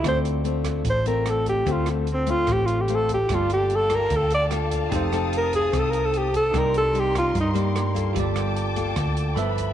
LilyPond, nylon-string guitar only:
\new Staff \with { instrumentName = "Nylon-string guitar" } { \time 4/4 \key g \minor \tempo 4 = 148 << { <a c' f'>4 <a c' f'>4 r8 <a c' f'>4. | <a c' f'>4 r8 <a c' f'>4. <a c' f'>8 r8 | <bes f' a'>4. <bes f' a'>4. <bes f' a'>4 | <c' ees' a'>8 <c' ees' a'>4. <c' ees' a'>4. r8 |
<g bes ees'>8 r8 <g bes ees'>4 r8 <g bes ees'>4 <bes f' a'>8~ | <bes f' a'>4. <bes f' a'>4. <f b e'>4 | } \\ { d2 a,2 | d2 a,2 | g2 d2 | f2 c2 |
c2 g,2 | g2 d4 r4 | } >> }